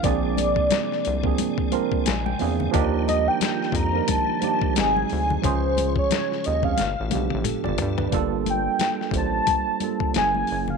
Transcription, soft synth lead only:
X:1
M:4/4
L:1/16
Q:"Swing 16ths" 1/4=89
K:Gm
V:1 name="Soft synth lead"
d12 z4 | z2 e g3 b2 a4 _a4 | c3 _d3 e f4 z4 z | z2 g4 a6 ^g3 f |]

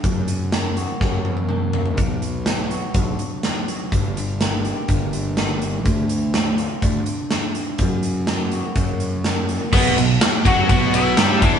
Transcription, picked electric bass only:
X:1
M:4/4
L:1/8
Q:1/4=124
K:F#phr
V:1 name="Picked electric bass" clef=bass
F,,4 F,,4 | B,,,4 B,,, z3 | G,,,4 G,,,4 | D,,4 D,, z3 |
F,,4 F,,4 | [K:Bm] B,,, B,,, z F,, B,,,2 G,, E,, |]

